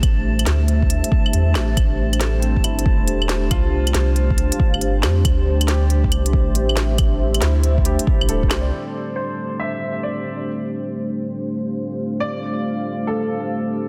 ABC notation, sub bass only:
X:1
M:4/4
L:1/16
Q:"Swing 16ths" 1/4=138
K:Dm
V:1 name="Sub bass" clef=bass
A,,,4 D,,4- D,, z3 E,,2 A,,,2 | A,,,8 G,,,3 E,,,4- E,,, | C,,4 C,,4- C,, z2 G,,,3 F,,2 | D,,8 C,,3 A,,,4- A,,,- |
A,,,4 D,,4- D,, z2 A,,, D,,,2 C,,2 | z16 | z16 | z16 |]